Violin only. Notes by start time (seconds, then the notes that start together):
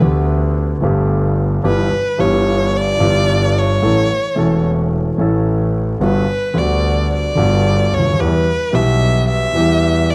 Already playing: B4
1.66 B4
2.21 C#5
2.77 D5
3.59 C#5
6.04 B4
6.58 D5
7.13 D5
7.94 C#5
8.20 B4
8.75 E5
9.29 E5
10.10 D5